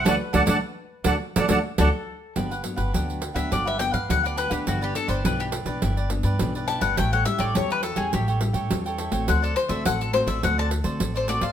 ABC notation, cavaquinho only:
X:1
M:4/4
L:1/16
Q:1/4=104
K:G
V:1 name="Cavaquinho"
[FAd] z [FAd] [FAd] z3 [FAd] z [FAd] [FAd] z [FAd] z3 | [DGBf] [GBf] z [GBf] [DGBf]3 [GBf] [DGBf] [GBf] z [GBf]2 [GBf] [DGBf] [GBf] | [EGBd] [GBd] z [GBd] [EGBd]3 [GBd] [EGBd] [GBd] z [GBd]2 [GBd] [EGBd] [GBd] | [EA^cg] [Acg] z [Acg] [EAcg]3 [Acg] [EAcg] [Acg] z [Acg]2 [Acg] [EAcg] [Acg] |
[FAcd] [Acd] z [Acd] [FAcd]3 [Acd] [FAcd] [Acd] z [Acd]2 [Acd] [FAcd] [Acd] |]